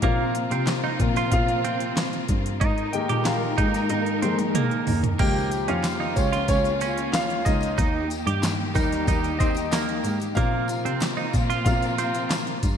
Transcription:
Already playing: A#3
0.02 A#2 C3 F3 A#3 C4 F4 F5, kick, closed hi-hat
0.35 closed hi-hat
0.51 C3 C4, closed hi-hat
0.67 snare, clap, closed hi-hat
0.84 D#4
1.00 A#2 C3 F3 A#3, kick, closed hi-hat
1.16 F4, snare, closed hi-hat
1.31 A#2 F4 F5, kick, closed hi-hat
1.48 closed hi-hat
1.65 C4, closed hi-hat
1.80 closed hi-hat
1.97 snare, clap, closed hi-hat
2.13 closed hi-hat
2.28 G2, kick, closed hi-hat
2.46 closed hi-hat
2.60 G#2 G#3 D#4 A#4 D#5, kick, closed hi-hat
2.78 closed hi-hat
2.93 D#3 G#3 A#3 G4 G5, closed hi-hat
3.09 A#2 G4, closed hi-hat
3.25 F4 F5, snare, clap, closed hi-hat
3.58 G#2 D#4, kick, closed hi-hat
3.74 snare, closed hi-hat
3.89 G#2 D#4, closed hi-hat, high tom
4.06 closed hi-hat
4.22 D#3 G#3 A#3 C4, closed hi-hat, mid tom
4.39 closed hi-hat, mid tom
4.55 A#3, closed hi-hat, mid tom
4.71 closed hi-hat
4.87 D#2, floor tom, open hi-hat
5.03 closed hi-hat, floor tom
5.18 C#2 C#3 D#3 F3 A#3 F4 G4 G5, kick, crash, tambourine
5.37 tambourine
5.51 closed hi-hat, tambourine
5.68 F2 C#4 F4 F5, closed hi-hat
5.84 snare, clap, closed hi-hat, tambourine
6.00 D#4
6.16 C#2 C#4 C#5, kick, closed hi-hat, tambourine
6.33 F4, snare, closed hi-hat
6.48 C#2 C#4 C#5, kick, closed hi-hat, tambourine
6.64 closed hi-hat, tambourine
6.80 C#4, closed hi-hat, tambourine
6.98 closed hi-hat
7.13 F4 F5, snare, clap, closed hi-hat, tambourine
7.30 closed hi-hat
7.45 C#2 D#4 D#5, kick, closed hi-hat, tambourine
7.61 closed hi-hat, tambourine
7.77 D#2 D#3 D#4 G4, kick, closed hi-hat, tambourine
8.10 closed hi-hat, tambourine
8.26 G2 G4, closed hi-hat
8.43 snare, clap, closed hi-hat, tambourine
8.74 D#2 D#3 G3 A#3 D#4, kick, closed hi-hat, tambourine
8.92 snare, closed hi-hat
9.07 D#2 D#4, kick, closed hi-hat, tambourine
9.24 closed hi-hat, tambourine
9.39 C4 D#4 D#5, kick, closed hi-hat, tambourine
9.54 closed hi-hat, tambourine
9.72 A#3, snare, clap, closed hi-hat, tambourine
9.89 closed hi-hat
10.04 G#2, closed hi-hat, tambourine
10.20 closed hi-hat, tambourine
10.35 A#2 C3 F3 A#3 C4 F4 F5, kick, closed hi-hat, tambourine
10.68 closed hi-hat, tambourine
10.85 C3 C4, closed hi-hat
11.00 snare, clap, closed hi-hat, tambourine
11.17 D#4
11.33 A#2, kick, closed hi-hat, tambourine
11.50 F4, snare, closed hi-hat
11.65 A#2 C3 F3 A#3 F4 F5, kick, closed hi-hat, tambourine
11.82 closed hi-hat, tambourine
11.98 C4, closed hi-hat, tambourine
12.14 closed hi-hat, tambourine
12.31 snare, clap, closed hi-hat, tambourine
12.47 closed hi-hat
12.63 G2, kick, closed hi-hat, tambourine

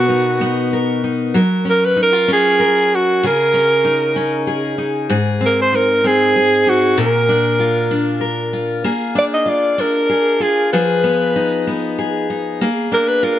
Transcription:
Already playing: B2 B3 F#4 A#4
0.09 D#4
0.41 B3
0.73 A#4
1.04 D#4
1.34 F#3 A#4
1.65 C#4
1.70 A#4
1.85 B4
1.96 D#4
2.02 A#4
2.13 F4
2.28 C#4
2.33 G#4
2.60 A#4
2.95 F#4
3.23 C#3 G#4 A#4
3.54 C#4
3.85 D#4
4.16 C#4
4.47 G#4
4.78 D#4
5.09 G#2 G#4
5.41 C4
5.46 A#4
5.62 C5
5.72 D#4 A#4
6.04 C4 G#4
6.36 G#4
6.67 D#4 F#4
6.97 A#2 A#4
7.29 D4
7.59 F4
7.91 D4
8.21 A#4
8.53 F4
8.84 A#3 G#4
9.15 D4 D5
9.34 D#5
9.46 F4 D5
9.78 D4 A#4
10.09 G#4
10.40 F4 G#4
10.73 F3 G#4 B4
11.04 B3
11.36 D#4
11.67 B3
11.99 G#4
12.30 D#4
12.61 A#3 G#4
12.92 D4 A#4
13.08 B4
13.23 F4 A#4

